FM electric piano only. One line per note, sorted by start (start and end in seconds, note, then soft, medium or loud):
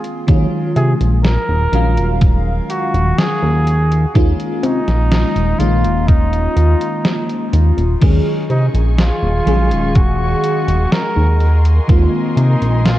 0.00 0.21 D#3 medium
0.00 0.22 G#3 medium
0.00 0.22 A#3 medium
0.00 0.22 C4 medium
0.00 0.23 F4 loud
0.27 1.67 D#3 medium
0.27 1.67 F#3 medium
0.27 1.68 G#3 medium
0.27 1.68 C#4 medium
0.27 1.68 F4 medium
1.72 3.63 D#3 medium
1.72 3.64 F#3 medium
1.72 3.64 G#3 medium
1.72 3.64 C#4 medium
1.72 3.65 F5 loud
4.14 5.54 D#3 medium
4.14 5.54 G#3 medium
4.14 5.55 A#3 medium
4.14 5.55 C#4 medium
4.14 5.55 F4 medium
5.58 7.96 D#3 medium
5.58 7.96 G#3 medium
5.58 7.96 A#3 medium
5.58 7.97 C#4 medium
5.58 7.97 F4 loud
8.00 9.41 D#3 medium
8.00 9.41 F#3 medium
8.00 9.42 G#3 medium
8.00 9.42 C#4 medium
8.00 9.42 G#4 medium
9.46 11.37 D#3 medium
9.46 11.37 F#3 medium
9.46 11.38 G#3 medium
9.46 11.38 C#4 medium
9.46 11.39 G#4 loud
11.87 12.99 D#3 medium
11.87 12.99 G#3 medium
11.87 12.99 A#3 medium
11.87 12.99 C4 medium
11.87 12.99 F4 medium